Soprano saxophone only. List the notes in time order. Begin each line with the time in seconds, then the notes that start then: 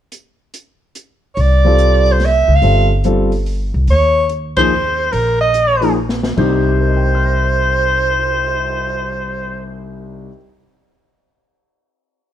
1.35 C#5
1.41 D5
2.12 C5
2.25 E5
2.55 F5
3.91 C#5
4.57 C5
5.13 A#4
5.41 D#5
6.39 C5